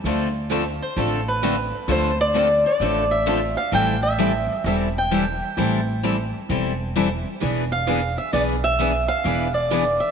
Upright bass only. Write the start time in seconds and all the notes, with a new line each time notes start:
0.04 D2
0.97 A1
1.88 D2
2.80 A1
3.72 A1
4.64 E1
5.57 A1
6.49 E1
7.43 E1
8.33 B1
9.25 E1